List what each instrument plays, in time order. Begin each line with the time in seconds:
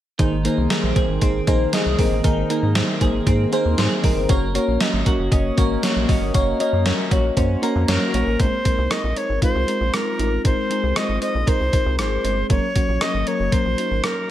0.19 analog synth bass G#1, clean electric guitar D#3, fm electric piano A#3 D#4 G#4 C5, kick, closed hi-hat
0.44 fm electric piano A#3 D#4 G#4 C5, clean electric guitar A#3, closed hi-hat
0.58 analog synth bass C2
0.70 fm electric piano A#3 D#4 G#4 A#4, clean electric guitar C4, snare, closed hi-hat
0.83 analog synth bass A#1
0.95 fm electric piano A#3 D#4 G#4 C5, clean electric guitar G#4, kick, closed hi-hat
1.09 analog synth bass G#1
1.21 analog synth bass G#1, fm electric piano A#3 D#4 G#4 C5, clean electric guitar C4, kick, closed hi-hat
1.47 analog synth bass A#1, fm electric piano A#3 D#4 G#4 C5, clean electric guitar A#3, kick, closed hi-hat
1.73 fm electric piano A#3 D#4 G#4 D#5, clean electric guitar G#4, snare, closed hi-hat
1.86 analog synth bass C2
1.98 analog synth bass A#1, fm electric piano A#3 D#4 G#4 A#4, clean electric guitar C4, kick, open hi-hat
2.11 analog synth bass A1
2.24 analog synth bass G#1, clean electric guitar D#3, fm electric piano A#3 D#4 G#4 A#4, kick, closed hi-hat
2.49 fm electric piano A#3 D#4 G#4 A#4, clean electric guitar A#3, closed hi-hat
2.63 analog synth bass G#2
2.75 fm electric piano A#3 D#4 G#4 C5, clean electric guitar C4, snare, closed hi-hat
3.01 analog synth bass G#1, fm electric piano A#3 D#4 G#4 C5, clean electric guitar G#4, kick, closed hi-hat
3.26 analog synth bass G#2, fm electric piano A#3 D#4 G#4 C5, clean electric guitar C4, kick, closed hi-hat
3.52 fm electric piano A#3 D#4 G#4 C5, clean electric guitar A#3, closed hi-hat
3.65 analog synth bass D#2
3.78 analog synth bass G#2, fm electric piano A#3 D#4 G#4 C5, clean electric guitar G#4, snare, closed hi-hat
4.03 analog synth bass G#1, fm electric piano A#3 D#4 G#4 A#4, clean electric guitar C4, kick, open hi-hat
4.17 analog synth bass G1
4.29 analog synth bass F#1, fm electric piano A#3 C#4 F#4 C#5, clean electric guitar A#3, kick, closed hi-hat
4.54 fm electric piano A#3 C#4 F#4 C#5, clean electric guitar A#3, closed hi-hat
4.68 analog synth bass A#1
4.80 fm electric piano A#3 C#4 F#4 D#5, clean electric guitar C#4, snare, closed hi-hat
4.93 analog synth bass G#1
5.06 fm electric piano A#3 C#4 F#4 A#4, clean electric guitar F#4, kick, closed hi-hat
5.19 analog synth bass F#1
5.31 analog synth bass F#1, fm electric piano A#3 C#4 F#4 D#5, clean electric guitar C#4, kick, closed hi-hat
5.57 analog synth bass G#1, fm electric piano A#3 C#4 F#4 C#5, clean electric guitar A#3, kick, closed hi-hat
5.82 fm electric piano A#3 C#4 F#4 C#5, clean electric guitar F#4, snare, closed hi-hat
5.96 analog synth bass A#1
6.08 analog synth bass G#1, fm electric piano A#3 C#4 F#4 D#5, clean electric guitar C#4, kick, open hi-hat
6.21 analog synth bass G1
6.34 analog synth bass F#1, fm electric piano A#3 C#4 F#4 C#5, clean electric guitar A#3, kick, closed hi-hat
6.59 fm electric piano A#3 C#4 F#4 D#5, clean electric guitar A#3, closed hi-hat
6.73 analog synth bass F#2
6.85 fm electric piano A#3 C#4 F#4 C#5, clean electric guitar C#4, snare, closed hi-hat
7.11 analog synth bass A#1, fm electric piano A#3 C#4 F#4 C#5, clean electric guitar F#4, kick, closed hi-hat
7.36 analog synth bass F#2, fm electric piano A#3 C#4 F#4 C5, clean electric guitar C#4, kick, closed hi-hat
7.62 fm electric piano A#3 C#4 F#4 A#4, clean electric guitar A#3, closed hi-hat
7.75 analog synth bass F2
7.88 analog synth bass F#2, fm electric piano A#3 C#4 F#4 C#5, clean electric guitar F#4, recorder A#4, snare, closed hi-hat
8.13 analog synth bass A#1, fm electric piano A#3 C#4 F#4 C#5, clean electric guitar C#4, closed hi-hat
8.27 analog synth bass A1
8.39 analog synth bass G#1, fm electric piano G#3 C4 D#4 A#4, recorder C5, kick, closed hi-hat
8.65 fm electric piano G#3 C4 D#4 A#4, kick, closed hi-hat
8.78 analog synth bass C2
8.90 fm electric piano G#3 C4 D#4 A#4, recorder D#5, cross-stick, closed hi-hat
9.04 analog synth bass A#1
9.16 fm electric piano G#3 C4 D#4 A#4, recorder C#5, closed hi-hat
9.29 analog synth bass G#1
9.41 fm electric piano G#3 C4 D#4 F4, recorder C5, kick, closed hi-hat
9.55 analog synth bass C2
9.67 fm electric piano G#3 C4 D#4 A#4, closed hi-hat
9.81 analog synth bass A#1
9.93 fm electric piano G#3 C4 D#4 A#4, recorder A#4, cross-stick, closed hi-hat
10.19 analog synth bass A1, fm electric piano G#3 C4 D#4 A#4, closed hi-hat
10.44 analog synth bass G#1, fm electric piano G#3 C4 D#4 A#4, recorder C5, kick, closed hi-hat
10.70 fm electric piano G#3 C4 D#4 G#4, closed hi-hat
10.83 analog synth bass C2
10.96 fm electric piano G#3 C4 D#4 C5, recorder D#5, cross-stick, closed hi-hat
11.09 analog synth bass G#1
11.21 fm electric piano G#3 C4 D#4 C5, recorder D#5, closed hi-hat
11.35 analog synth bass A#1
11.46 fm electric piano G#3 C4 D#4 A#4, recorder C5, kick, closed hi-hat
11.60 analog synth bass C2
11.72 fm electric piano G#3 C4 D#4 A#4, kick, closed hi-hat
11.86 analog synth bass C2
11.98 analog synth bass G#1, fm electric piano G#3 C4 D#4 G#4, recorder C5, cross-stick, closed hi-hat
12.24 analog synth bass G1, fm electric piano G#3 C4 D#4 C5, closed hi-hat
12.49 analog synth bass F#1, fm electric piano F#3 A#3 C#4 A#4, recorder C#5, kick, closed hi-hat
12.75 fm electric piano F#3 A#3 C#4 F#4, kick, closed hi-hat
12.88 analog synth bass A#1
13.01 fm electric piano F#3 A#3 C#4 A#4, recorder D#5, cross-stick, closed hi-hat
13.14 analog synth bass G#1
13.26 fm electric piano F#3 A#3 C#4 A#4, recorder C#5, closed hi-hat
13.40 analog synth bass F#1
13.52 fm electric piano F#3 A#3 C#4 A#4, recorder C5, kick, closed hi-hat
13.65 analog synth bass A#1
13.77 fm electric piano F#3 A#3 C#4 D#4, closed hi-hat
13.91 analog synth bass G#1
14.03 fm electric piano F#3 A#3 C#4 A#4, recorder A#4, cross-stick, closed hi-hat